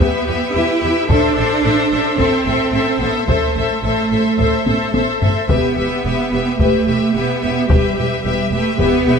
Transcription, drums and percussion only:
0, 0, Header, 1, 2, 480
1, 0, Start_track
1, 0, Key_signature, 1, "minor"
1, 0, Tempo, 548948
1, 957, Time_signature, 4, 2, 24, 8
1, 8038, End_track
2, 0, Start_track
2, 0, Title_t, "Taiko and cinematic ensemble drums"
2, 3, Note_on_c, 9, 41, 67
2, 90, Note_off_c, 9, 41, 0
2, 960, Note_on_c, 9, 41, 83
2, 1048, Note_off_c, 9, 41, 0
2, 1910, Note_on_c, 9, 41, 65
2, 1998, Note_off_c, 9, 41, 0
2, 2868, Note_on_c, 9, 41, 79
2, 2955, Note_off_c, 9, 41, 0
2, 3835, Note_on_c, 9, 41, 62
2, 3923, Note_off_c, 9, 41, 0
2, 4077, Note_on_c, 9, 48, 62
2, 4164, Note_off_c, 9, 48, 0
2, 4318, Note_on_c, 9, 48, 64
2, 4406, Note_off_c, 9, 48, 0
2, 4562, Note_on_c, 9, 43, 78
2, 4649, Note_off_c, 9, 43, 0
2, 4803, Note_on_c, 9, 41, 78
2, 4890, Note_off_c, 9, 41, 0
2, 5766, Note_on_c, 9, 41, 64
2, 5853, Note_off_c, 9, 41, 0
2, 6731, Note_on_c, 9, 41, 82
2, 6819, Note_off_c, 9, 41, 0
2, 7687, Note_on_c, 9, 41, 66
2, 7774, Note_off_c, 9, 41, 0
2, 8038, End_track
0, 0, End_of_file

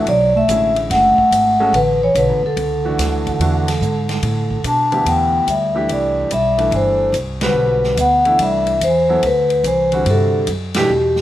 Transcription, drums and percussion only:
0, 0, Header, 1, 2, 480
1, 0, Start_track
1, 0, Tempo, 416089
1, 85, Time_signature, 4, 2, 24, 8
1, 12936, End_track
2, 0, Start_track
2, 0, Title_t, "Drums"
2, 76, Note_on_c, 9, 51, 58
2, 192, Note_off_c, 9, 51, 0
2, 561, Note_on_c, 9, 44, 57
2, 561, Note_on_c, 9, 51, 63
2, 677, Note_off_c, 9, 44, 0
2, 677, Note_off_c, 9, 51, 0
2, 879, Note_on_c, 9, 51, 45
2, 994, Note_off_c, 9, 51, 0
2, 1045, Note_on_c, 9, 51, 62
2, 1050, Note_on_c, 9, 38, 38
2, 1161, Note_off_c, 9, 51, 0
2, 1165, Note_off_c, 9, 38, 0
2, 1364, Note_on_c, 9, 36, 53
2, 1479, Note_off_c, 9, 36, 0
2, 1526, Note_on_c, 9, 44, 52
2, 1526, Note_on_c, 9, 51, 69
2, 1641, Note_off_c, 9, 44, 0
2, 1641, Note_off_c, 9, 51, 0
2, 2007, Note_on_c, 9, 51, 58
2, 2122, Note_off_c, 9, 51, 0
2, 2484, Note_on_c, 9, 44, 51
2, 2484, Note_on_c, 9, 51, 61
2, 2599, Note_off_c, 9, 44, 0
2, 2599, Note_off_c, 9, 51, 0
2, 2963, Note_on_c, 9, 51, 59
2, 3078, Note_off_c, 9, 51, 0
2, 3449, Note_on_c, 9, 44, 54
2, 3449, Note_on_c, 9, 51, 71
2, 3454, Note_on_c, 9, 38, 39
2, 3564, Note_off_c, 9, 44, 0
2, 3564, Note_off_c, 9, 51, 0
2, 3569, Note_off_c, 9, 38, 0
2, 3768, Note_on_c, 9, 36, 55
2, 3769, Note_on_c, 9, 51, 42
2, 3883, Note_off_c, 9, 36, 0
2, 3884, Note_off_c, 9, 51, 0
2, 3929, Note_on_c, 9, 51, 60
2, 4044, Note_off_c, 9, 51, 0
2, 4245, Note_on_c, 9, 51, 70
2, 4250, Note_on_c, 9, 38, 41
2, 4361, Note_off_c, 9, 51, 0
2, 4365, Note_off_c, 9, 38, 0
2, 4406, Note_on_c, 9, 44, 54
2, 4521, Note_off_c, 9, 44, 0
2, 4717, Note_on_c, 9, 51, 47
2, 4722, Note_on_c, 9, 38, 54
2, 4833, Note_off_c, 9, 51, 0
2, 4837, Note_off_c, 9, 38, 0
2, 4875, Note_on_c, 9, 51, 61
2, 4991, Note_off_c, 9, 51, 0
2, 5197, Note_on_c, 9, 36, 52
2, 5312, Note_off_c, 9, 36, 0
2, 5355, Note_on_c, 9, 44, 55
2, 5355, Note_on_c, 9, 51, 61
2, 5470, Note_off_c, 9, 44, 0
2, 5470, Note_off_c, 9, 51, 0
2, 5675, Note_on_c, 9, 51, 42
2, 5790, Note_off_c, 9, 51, 0
2, 5840, Note_on_c, 9, 51, 59
2, 5955, Note_off_c, 9, 51, 0
2, 6317, Note_on_c, 9, 44, 54
2, 6317, Note_on_c, 9, 51, 60
2, 6432, Note_off_c, 9, 44, 0
2, 6432, Note_off_c, 9, 51, 0
2, 6797, Note_on_c, 9, 51, 57
2, 6912, Note_off_c, 9, 51, 0
2, 7275, Note_on_c, 9, 44, 55
2, 7275, Note_on_c, 9, 51, 61
2, 7390, Note_off_c, 9, 44, 0
2, 7390, Note_off_c, 9, 51, 0
2, 7596, Note_on_c, 9, 51, 46
2, 7711, Note_off_c, 9, 51, 0
2, 7752, Note_on_c, 9, 51, 53
2, 7867, Note_off_c, 9, 51, 0
2, 8233, Note_on_c, 9, 44, 56
2, 8233, Note_on_c, 9, 51, 60
2, 8348, Note_off_c, 9, 44, 0
2, 8348, Note_off_c, 9, 51, 0
2, 8548, Note_on_c, 9, 51, 64
2, 8552, Note_on_c, 9, 38, 85
2, 8663, Note_off_c, 9, 51, 0
2, 8668, Note_off_c, 9, 38, 0
2, 9042, Note_on_c, 9, 38, 42
2, 9157, Note_off_c, 9, 38, 0
2, 9197, Note_on_c, 9, 44, 61
2, 9197, Note_on_c, 9, 51, 64
2, 9312, Note_off_c, 9, 44, 0
2, 9312, Note_off_c, 9, 51, 0
2, 9519, Note_on_c, 9, 51, 40
2, 9634, Note_off_c, 9, 51, 0
2, 9676, Note_on_c, 9, 51, 63
2, 9791, Note_off_c, 9, 51, 0
2, 9996, Note_on_c, 9, 51, 48
2, 10112, Note_off_c, 9, 51, 0
2, 10166, Note_on_c, 9, 44, 54
2, 10166, Note_on_c, 9, 51, 66
2, 10281, Note_off_c, 9, 44, 0
2, 10281, Note_off_c, 9, 51, 0
2, 10644, Note_on_c, 9, 51, 61
2, 10759, Note_off_c, 9, 51, 0
2, 10960, Note_on_c, 9, 51, 44
2, 11075, Note_off_c, 9, 51, 0
2, 11123, Note_on_c, 9, 44, 56
2, 11123, Note_on_c, 9, 51, 59
2, 11238, Note_off_c, 9, 44, 0
2, 11238, Note_off_c, 9, 51, 0
2, 11441, Note_on_c, 9, 51, 44
2, 11556, Note_off_c, 9, 51, 0
2, 11604, Note_on_c, 9, 51, 60
2, 11719, Note_off_c, 9, 51, 0
2, 12076, Note_on_c, 9, 44, 49
2, 12076, Note_on_c, 9, 51, 65
2, 12192, Note_off_c, 9, 44, 0
2, 12192, Note_off_c, 9, 51, 0
2, 12393, Note_on_c, 9, 51, 71
2, 12398, Note_on_c, 9, 38, 88
2, 12509, Note_off_c, 9, 51, 0
2, 12513, Note_off_c, 9, 38, 0
2, 12874, Note_on_c, 9, 38, 44
2, 12936, Note_off_c, 9, 38, 0
2, 12936, End_track
0, 0, End_of_file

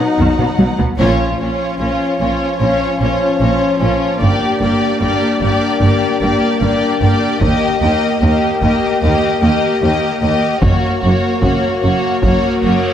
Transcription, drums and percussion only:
0, 0, Header, 1, 2, 480
1, 0, Start_track
1, 0, Tempo, 802139
1, 598, Time_signature, 4, 2, 24, 8
1, 7740, End_track
2, 0, Start_track
2, 0, Title_t, "Taiko and cinematic ensemble drums"
2, 110, Note_on_c, 9, 45, 65
2, 170, Note_off_c, 9, 45, 0
2, 234, Note_on_c, 9, 47, 73
2, 294, Note_off_c, 9, 47, 0
2, 352, Note_on_c, 9, 48, 77
2, 412, Note_off_c, 9, 48, 0
2, 473, Note_on_c, 9, 43, 75
2, 533, Note_off_c, 9, 43, 0
2, 594, Note_on_c, 9, 41, 42
2, 654, Note_off_c, 9, 41, 0
2, 4435, Note_on_c, 9, 41, 54
2, 4495, Note_off_c, 9, 41, 0
2, 5155, Note_on_c, 9, 41, 36
2, 5215, Note_off_c, 9, 41, 0
2, 6354, Note_on_c, 9, 41, 75
2, 6414, Note_off_c, 9, 41, 0
2, 6838, Note_on_c, 9, 41, 66
2, 6897, Note_off_c, 9, 41, 0
2, 7314, Note_on_c, 9, 41, 71
2, 7373, Note_off_c, 9, 41, 0
2, 7740, End_track
0, 0, End_of_file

